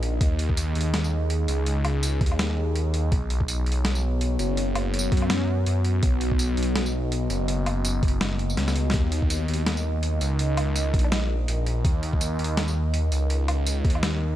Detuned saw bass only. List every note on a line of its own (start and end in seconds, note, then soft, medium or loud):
0.00 0.20 A#1 loud
0.21 0.74 D#2 loud
0.75 1.47 D#2 loud
1.48 2.20 C#2 loud
2.21 3.11 D#2 loud
3.12 3.65 B1 loud
3.66 4.38 B1 loud
4.39 5.11 F#1 medium
5.12 5.65 F#2 loud
5.67 6.02 F#2 loud
6.03 6.56 B1 loud
6.57 7.29 B1 loud
7.30 8.02 F#1 loud
8.03 8.56 F#1 loud
8.57 8.92 C#2 loud
8.94 9.47 D#2 loud
9.48 10.20 D#2 loud
10.21 10.92 C#2 loud
10.94 11.47 A#1 loud
11.48 11.83 A#1 loud
11.85 12.38 D#2 loud
12.39 13.11 D#2 loud
13.12 13.83 C#2 loud
13.85 14.36 D#2 loud